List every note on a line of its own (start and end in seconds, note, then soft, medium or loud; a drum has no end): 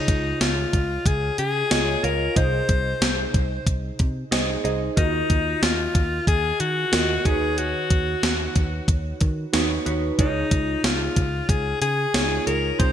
0.00 0.69 C#3 medium
0.00 0.43 D#4 medium
0.00 0.58 F4 medium
0.00 0.59 G#4 medium
0.00 0.59 C#5 medium
0.00 0.59 D#5 medium
0.08 0.32 C#2 medium
0.08 kick medium
0.08 closed hi-hat medium
0.41 0.64 C#2 medium
0.41 1.08 F4 medium
0.41 snare medium
0.41 closed hi-hat medium
0.73 0.97 C#2 medium
0.73 kick medium
0.73 closed hi-hat medium
1.06 1.29 C#2 loud
1.06 1.39 G#4 medium
1.06 kick medium
1.06 closed hi-hat medium
1.38 1.62 C#3 medium
1.38 2.06 G#4 loud
1.38 closed hi-hat medium
1.70 1.95 C#2 medium
1.70 1.92 F4 medium
1.70 1.93 G#4 medium
1.70 1.93 C#5 medium
1.70 1.93 D#5 medium
1.70 snare loud
1.70 closed hi-hat medium
2.03 2.27 C#2 medium
2.03 2.25 F4 medium
2.03 2.25 G#4 medium
2.03 2.39 A#4 medium
2.03 2.25 C#5 medium
2.03 2.26 F5 medium
2.03 closed hi-hat medium
2.36 2.60 C2 loud
2.36 3.30 C3 medium
2.36 3.19 D#4 medium
2.36 3.20 G#4 medium
2.36 3.20 C5 medium
2.36 3.67 C5 loud
2.36 3.20 D#5 medium
2.36 kick medium
2.36 closed hi-hat medium
2.69 2.92 C2 medium
2.69 kick medium
2.69 closed hi-hat medium
3.01 3.25 C2 medium
3.01 snare medium
3.01 closed hi-hat medium
3.34 3.58 C2 medium
3.34 kick medium
3.34 closed hi-hat medium
3.66 3.90 C2 loud
3.66 kick medium
3.66 closed hi-hat medium
3.99 4.23 C3 medium
3.99 kick medium
3.99 closed hi-hat medium
4.31 4.55 C2 medium
4.31 4.53 D#4 medium
4.31 4.53 G#4 medium
4.31 4.54 C5 medium
4.31 4.54 D#5 medium
4.31 snare loud
4.31 closed hi-hat medium
4.64 4.88 C2 medium
4.64 4.86 D#4 medium
4.64 4.86 G#4 medium
4.64 4.86 C5 medium
4.64 4.86 D#5 medium
4.64 closed hi-hat medium
4.96 5.21 D#2 medium
4.96 5.91 D#3 medium
4.96 5.64 D#4 medium
4.96 5.80 F4 medium
4.96 5.80 F#4 medium
4.96 5.81 A#4 medium
4.96 5.81 D#5 medium
4.96 kick loud
4.96 closed hi-hat medium
5.30 5.53 D#2 medium
5.30 kick medium
5.30 closed hi-hat medium
5.62 5.86 D#2 medium
5.62 6.27 F4 medium
5.62 snare medium
5.62 closed hi-hat medium
5.95 6.18 D#2 medium
5.95 kick medium
5.95 closed hi-hat medium
6.27 6.51 D#2 medium
6.27 6.62 G#4 loud
6.27 kick medium
6.27 closed hi-hat medium
6.60 6.84 D#3 medium
6.60 7.27 F#4 loud
6.60 closed hi-hat medium
6.92 7.16 D#2 medium
6.92 7.14 F4 medium
6.92 7.14 F#4 medium
6.92 7.14 A#4 medium
6.92 7.15 D#5 medium
6.92 snare loud
6.92 closed hi-hat medium
7.25 7.72 D#2 medium
7.25 8.19 D#3 medium
7.25 8.30 D#4 medium
7.25 8.30 F#4 medium
7.25 7.60 G#4 medium
7.25 8.31 B4 medium
7.25 8.31 C#5 medium
7.25 kick loud
7.25 closed hi-hat medium
7.58 8.88 F#4 medium
7.58 closed hi-hat medium
7.90 8.14 D#2 medium
7.90 kick medium
7.90 closed hi-hat medium
8.23 8.47 D#2 medium
8.23 snare medium
8.23 closed hi-hat medium
8.56 8.79 D#2 medium
8.56 kick medium
8.56 closed hi-hat medium
8.88 9.12 D#2 medium
8.88 kick medium
8.88 closed hi-hat medium
9.21 9.45 D#3 medium
9.21 kick medium
9.21 closed hi-hat medium
9.53 9.77 D#2 medium
9.53 9.75 D#4 medium
9.53 9.75 F#4 medium
9.53 9.75 B4 medium
9.53 9.76 C#5 medium
9.53 snare loud
9.53 closed hi-hat medium
9.86 10.10 D#2 medium
9.86 10.08 D#4 medium
9.86 10.08 F#4 medium
9.86 10.08 B4 medium
9.86 10.08 C#5 medium
9.86 closed hi-hat medium
10.18 10.42 C#2 loud
10.18 11.13 C#3 medium
10.18 11.02 D#4 medium
10.18 10.86 D#4 medium
10.18 10.26 E4 soft
10.18 11.02 G#4 medium
10.18 11.03 C#5 medium
10.18 kick medium
10.18 closed hi-hat medium
10.25 11.05 F4 medium
10.51 10.75 C#2 medium
10.51 kick medium
10.51 closed hi-hat medium
10.84 11.07 C#2 medium
10.84 11.51 F4 medium
10.84 snare loud
10.84 closed hi-hat medium
11.16 11.40 C#2 medium
11.16 kick medium
11.16 closed hi-hat medium
11.49 11.72 C#2 loud
11.49 11.81 G#4 medium
11.49 kick medium
11.49 closed hi-hat medium
11.81 12.05 C#3 medium
11.81 12.43 G#4 loud
11.81 closed hi-hat medium
12.14 12.38 C#2 medium
12.14 12.36 D#4 medium
12.14 12.36 F4 medium
12.14 12.36 G#4 medium
12.14 12.36 C#5 medium
12.14 snare loud
12.14 closed hi-hat medium
12.47 12.71 C#2 medium
12.47 12.68 D#4 medium
12.47 12.69 F4 medium
12.47 12.69 G#4 medium
12.47 12.81 A#4 loud
12.47 12.69 C#5 medium
12.47 closed hi-hat medium
12.79 12.92 C2 loud
12.79 12.92 C3 medium
12.79 12.92 C4 medium
12.79 12.92 D#4 medium
12.79 12.92 G#4 medium
12.79 12.92 C5 loud
12.79 12.92 C5 medium
12.79 kick loud
12.79 closed hi-hat medium